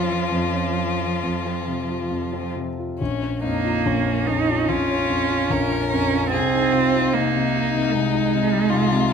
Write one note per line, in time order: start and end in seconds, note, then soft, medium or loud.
0.00 0.30 F2 soft
0.00 0.21 F3 soft
0.00 2.51 F3 medium
0.00 0.53 C#4 soft
0.00 2.52 F4 soft
0.06 0.44 F4 soft
0.31 1.20 F2 soft
0.53 0.90 C#4 soft
0.76 1.13 F3 soft
1.00 1.22 F4 soft
1.23 2.09 F2 soft
1.45 1.80 C4 soft
1.68 2.02 C3 soft
1.89 2.24 F4 soft
2.10 2.97 F2 soft
2.32 2.69 C4 soft
2.56 2.91 C3 soft
2.79 3.00 F4 soft
2.99 3.84 A#1 soft
2.99 3.39 C#4 soft
3.23 3.56 C#4 soft
3.41 3.78 F2 soft
3.41 4.28 A#3 medium
3.41 3.88 D#4 soft
3.65 3.99 F4 soft
3.85 4.67 A#1 soft
3.85 4.70 C#4 soft
4.07 4.40 C#4 soft
4.26 4.61 F2 soft
4.26 4.70 D#4 medium
4.49 4.82 F4 soft
4.68 5.48 A#1 soft
4.68 5.90 C#4 medium
4.68 5.53 F4 medium
4.90 5.23 C#4 soft
5.09 5.43 F2 soft
5.30 5.63 F4 soft
5.50 6.30 A#1 soft
5.50 6.31 A#4 medium
5.71 6.04 C#4 soft
5.91 6.25 F2 soft
5.91 6.31 C#4 medium
6.13 6.33 F4 soft
6.32 7.15 C2 soft
6.32 7.15 C4 medium
6.32 6.74 G#4 soft
6.54 6.86 D#4 soft
6.72 7.06 C3 soft
6.72 7.16 F4 soft
6.96 7.26 D#4 soft
7.13 7.92 C2 soft
7.13 7.85 A#3 medium
7.13 8.71 D#4 soft
7.36 7.66 C3 soft
7.56 7.86 D#4 soft
7.75 8.06 C3 soft
7.86 7.93 A#3 soft
7.92 8.71 C2 soft
7.92 9.13 G#3 medium
8.14 8.44 D#4 soft
8.34 8.64 C3 soft
8.53 8.83 D#4 soft
8.70 9.13 C2 medium
8.70 9.13 F4 medium
8.92 9.13 C3 soft